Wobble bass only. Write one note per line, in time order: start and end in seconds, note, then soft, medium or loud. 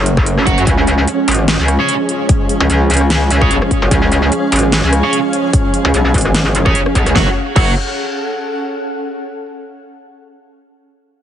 0.00 0.56 F#1 loud
0.58 0.65 F#2 loud
0.67 1.06 C#2 loud
1.28 1.57 G#1 loud
1.59 1.78 C#2 loud
2.60 2.68 C#2 loud
2.70 3.49 C#2 loud
3.51 3.60 B1 loud
3.82 3.90 G#1 loud
3.91 4.30 C#2 loud
4.52 4.82 G#1 loud
4.83 5.02 C#2 loud
5.85 5.93 C#2 loud
5.94 6.13 B1 loud
6.14 6.74 G#1 loud
6.95 7.05 B1 loud
7.06 7.14 C#2 loud
7.16 7.28 F#1 loud
7.56 7.75 F#1 loud